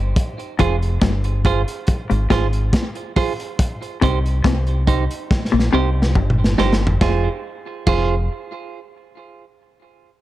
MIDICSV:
0, 0, Header, 1, 5, 480
1, 0, Start_track
1, 0, Key_signature, -4, "minor"
1, 0, Tempo, 857143
1, 91, Time_signature, 4, 2, 24, 8
1, 5719, End_track
2, 0, Start_track
2, 0, Title_t, "Clean electric guitar"
2, 0, Program_c, 0, 27
2, 335, Note_on_c, 0, 65, 83
2, 336, Note_on_c, 0, 68, 100
2, 337, Note_on_c, 0, 72, 92
2, 421, Note_off_c, 0, 65, 0
2, 422, Note_off_c, 0, 68, 0
2, 422, Note_off_c, 0, 72, 0
2, 815, Note_on_c, 0, 65, 98
2, 816, Note_on_c, 0, 68, 93
2, 820, Note_on_c, 0, 72, 96
2, 901, Note_off_c, 0, 65, 0
2, 901, Note_off_c, 0, 68, 0
2, 904, Note_off_c, 0, 72, 0
2, 1291, Note_on_c, 0, 65, 76
2, 1294, Note_on_c, 0, 68, 77
2, 1299, Note_on_c, 0, 72, 86
2, 1379, Note_off_c, 0, 65, 0
2, 1380, Note_off_c, 0, 68, 0
2, 1383, Note_off_c, 0, 72, 0
2, 1772, Note_on_c, 0, 65, 75
2, 1774, Note_on_c, 0, 68, 84
2, 1777, Note_on_c, 0, 72, 76
2, 1859, Note_off_c, 0, 65, 0
2, 1860, Note_off_c, 0, 68, 0
2, 1862, Note_off_c, 0, 72, 0
2, 2253, Note_on_c, 0, 63, 82
2, 2258, Note_on_c, 0, 67, 85
2, 2260, Note_on_c, 0, 72, 93
2, 2340, Note_off_c, 0, 63, 0
2, 2342, Note_off_c, 0, 67, 0
2, 2343, Note_off_c, 0, 72, 0
2, 2729, Note_on_c, 0, 63, 89
2, 2734, Note_on_c, 0, 67, 85
2, 2734, Note_on_c, 0, 72, 89
2, 2818, Note_off_c, 0, 63, 0
2, 2820, Note_off_c, 0, 67, 0
2, 2820, Note_off_c, 0, 72, 0
2, 3211, Note_on_c, 0, 63, 79
2, 3213, Note_on_c, 0, 67, 82
2, 3217, Note_on_c, 0, 72, 89
2, 3298, Note_off_c, 0, 63, 0
2, 3299, Note_off_c, 0, 67, 0
2, 3302, Note_off_c, 0, 72, 0
2, 3686, Note_on_c, 0, 63, 68
2, 3691, Note_on_c, 0, 67, 74
2, 3694, Note_on_c, 0, 72, 83
2, 3776, Note_off_c, 0, 63, 0
2, 3778, Note_off_c, 0, 67, 0
2, 3780, Note_off_c, 0, 72, 0
2, 3926, Note_on_c, 0, 65, 68
2, 3932, Note_on_c, 0, 68, 80
2, 3933, Note_on_c, 0, 72, 74
2, 4077, Note_off_c, 0, 65, 0
2, 4080, Note_off_c, 0, 68, 0
2, 4080, Note_off_c, 0, 72, 0
2, 4406, Note_on_c, 0, 65, 87
2, 4412, Note_on_c, 0, 68, 87
2, 4418, Note_on_c, 0, 72, 99
2, 4557, Note_off_c, 0, 65, 0
2, 4559, Note_off_c, 0, 68, 0
2, 4562, Note_off_c, 0, 72, 0
2, 5719, End_track
3, 0, Start_track
3, 0, Title_t, "Clean electric guitar"
3, 0, Program_c, 1, 27
3, 330, Note_on_c, 1, 41, 85
3, 474, Note_off_c, 1, 41, 0
3, 569, Note_on_c, 1, 43, 85
3, 713, Note_off_c, 1, 43, 0
3, 1174, Note_on_c, 1, 44, 77
3, 1243, Note_off_c, 1, 44, 0
3, 1289, Note_on_c, 1, 44, 96
3, 1433, Note_off_c, 1, 44, 0
3, 2248, Note_on_c, 1, 48, 81
3, 2392, Note_off_c, 1, 48, 0
3, 2488, Note_on_c, 1, 48, 85
3, 2632, Note_off_c, 1, 48, 0
3, 3091, Note_on_c, 1, 46, 70
3, 3160, Note_off_c, 1, 46, 0
3, 3206, Note_on_c, 1, 48, 82
3, 3351, Note_off_c, 1, 48, 0
3, 3448, Note_on_c, 1, 43, 70
3, 3592, Note_off_c, 1, 43, 0
3, 3688, Note_on_c, 1, 43, 66
3, 3832, Note_off_c, 1, 43, 0
3, 5719, End_track
4, 0, Start_track
4, 0, Title_t, "Fingered electric bass"
4, 0, Program_c, 2, 33
4, 0, Note_on_c, 2, 31, 74
4, 73, Note_off_c, 2, 31, 0
4, 334, Note_on_c, 2, 29, 90
4, 552, Note_off_c, 2, 29, 0
4, 572, Note_on_c, 2, 31, 93
4, 915, Note_off_c, 2, 31, 0
4, 1183, Note_on_c, 2, 32, 85
4, 1284, Note_off_c, 2, 32, 0
4, 1294, Note_on_c, 2, 32, 86
4, 1512, Note_off_c, 2, 32, 0
4, 2256, Note_on_c, 2, 36, 94
4, 2473, Note_off_c, 2, 36, 0
4, 2492, Note_on_c, 2, 36, 93
4, 2835, Note_off_c, 2, 36, 0
4, 3100, Note_on_c, 2, 34, 90
4, 3202, Note_off_c, 2, 34, 0
4, 3212, Note_on_c, 2, 36, 81
4, 3431, Note_off_c, 2, 36, 0
4, 3450, Note_on_c, 2, 31, 96
4, 3670, Note_off_c, 2, 31, 0
4, 3691, Note_on_c, 2, 31, 74
4, 3910, Note_off_c, 2, 31, 0
4, 3929, Note_on_c, 2, 29, 100
4, 4068, Note_off_c, 2, 29, 0
4, 4409, Note_on_c, 2, 29, 90
4, 4632, Note_off_c, 2, 29, 0
4, 5719, End_track
5, 0, Start_track
5, 0, Title_t, "Drums"
5, 91, Note_on_c, 9, 36, 126
5, 93, Note_on_c, 9, 42, 98
5, 147, Note_off_c, 9, 36, 0
5, 149, Note_off_c, 9, 42, 0
5, 221, Note_on_c, 9, 42, 38
5, 277, Note_off_c, 9, 42, 0
5, 330, Note_on_c, 9, 42, 80
5, 333, Note_on_c, 9, 36, 95
5, 386, Note_off_c, 9, 42, 0
5, 389, Note_off_c, 9, 36, 0
5, 462, Note_on_c, 9, 42, 46
5, 518, Note_off_c, 9, 42, 0
5, 568, Note_on_c, 9, 38, 114
5, 569, Note_on_c, 9, 36, 116
5, 575, Note_on_c, 9, 42, 78
5, 624, Note_off_c, 9, 38, 0
5, 625, Note_off_c, 9, 36, 0
5, 631, Note_off_c, 9, 42, 0
5, 695, Note_on_c, 9, 42, 49
5, 751, Note_off_c, 9, 42, 0
5, 811, Note_on_c, 9, 36, 97
5, 813, Note_on_c, 9, 42, 71
5, 867, Note_off_c, 9, 36, 0
5, 869, Note_off_c, 9, 42, 0
5, 940, Note_on_c, 9, 42, 62
5, 996, Note_off_c, 9, 42, 0
5, 1046, Note_on_c, 9, 42, 83
5, 1053, Note_on_c, 9, 36, 106
5, 1102, Note_off_c, 9, 42, 0
5, 1109, Note_off_c, 9, 36, 0
5, 1180, Note_on_c, 9, 42, 56
5, 1236, Note_off_c, 9, 42, 0
5, 1289, Note_on_c, 9, 38, 67
5, 1290, Note_on_c, 9, 36, 81
5, 1296, Note_on_c, 9, 42, 57
5, 1345, Note_off_c, 9, 38, 0
5, 1346, Note_off_c, 9, 36, 0
5, 1352, Note_off_c, 9, 42, 0
5, 1416, Note_on_c, 9, 42, 56
5, 1472, Note_off_c, 9, 42, 0
5, 1529, Note_on_c, 9, 36, 113
5, 1529, Note_on_c, 9, 42, 99
5, 1535, Note_on_c, 9, 38, 123
5, 1585, Note_off_c, 9, 36, 0
5, 1585, Note_off_c, 9, 42, 0
5, 1591, Note_off_c, 9, 38, 0
5, 1654, Note_on_c, 9, 42, 42
5, 1710, Note_off_c, 9, 42, 0
5, 1772, Note_on_c, 9, 36, 99
5, 1772, Note_on_c, 9, 46, 67
5, 1828, Note_off_c, 9, 36, 0
5, 1828, Note_off_c, 9, 46, 0
5, 1902, Note_on_c, 9, 42, 71
5, 1958, Note_off_c, 9, 42, 0
5, 2011, Note_on_c, 9, 36, 126
5, 2011, Note_on_c, 9, 42, 92
5, 2067, Note_off_c, 9, 36, 0
5, 2067, Note_off_c, 9, 42, 0
5, 2142, Note_on_c, 9, 42, 41
5, 2198, Note_off_c, 9, 42, 0
5, 2252, Note_on_c, 9, 42, 77
5, 2253, Note_on_c, 9, 36, 102
5, 2308, Note_off_c, 9, 42, 0
5, 2309, Note_off_c, 9, 36, 0
5, 2384, Note_on_c, 9, 42, 49
5, 2440, Note_off_c, 9, 42, 0
5, 2488, Note_on_c, 9, 36, 115
5, 2488, Note_on_c, 9, 38, 110
5, 2494, Note_on_c, 9, 42, 75
5, 2544, Note_off_c, 9, 36, 0
5, 2544, Note_off_c, 9, 38, 0
5, 2550, Note_off_c, 9, 42, 0
5, 2613, Note_on_c, 9, 42, 42
5, 2669, Note_off_c, 9, 42, 0
5, 2730, Note_on_c, 9, 36, 92
5, 2733, Note_on_c, 9, 42, 69
5, 2786, Note_off_c, 9, 36, 0
5, 2789, Note_off_c, 9, 42, 0
5, 2860, Note_on_c, 9, 42, 64
5, 2916, Note_off_c, 9, 42, 0
5, 2972, Note_on_c, 9, 36, 114
5, 2974, Note_on_c, 9, 38, 59
5, 3028, Note_off_c, 9, 36, 0
5, 3030, Note_off_c, 9, 38, 0
5, 3053, Note_on_c, 9, 38, 48
5, 3109, Note_off_c, 9, 38, 0
5, 3133, Note_on_c, 9, 38, 69
5, 3189, Note_off_c, 9, 38, 0
5, 3372, Note_on_c, 9, 38, 69
5, 3428, Note_off_c, 9, 38, 0
5, 3446, Note_on_c, 9, 36, 110
5, 3502, Note_off_c, 9, 36, 0
5, 3528, Note_on_c, 9, 45, 81
5, 3584, Note_off_c, 9, 45, 0
5, 3608, Note_on_c, 9, 38, 89
5, 3664, Note_off_c, 9, 38, 0
5, 3686, Note_on_c, 9, 38, 83
5, 3742, Note_off_c, 9, 38, 0
5, 3767, Note_on_c, 9, 38, 100
5, 3823, Note_off_c, 9, 38, 0
5, 3846, Note_on_c, 9, 43, 96
5, 3902, Note_off_c, 9, 43, 0
5, 3926, Note_on_c, 9, 36, 120
5, 3926, Note_on_c, 9, 38, 92
5, 3982, Note_off_c, 9, 36, 0
5, 3982, Note_off_c, 9, 38, 0
5, 4405, Note_on_c, 9, 49, 85
5, 4406, Note_on_c, 9, 36, 106
5, 4461, Note_off_c, 9, 49, 0
5, 4462, Note_off_c, 9, 36, 0
5, 5719, End_track
0, 0, End_of_file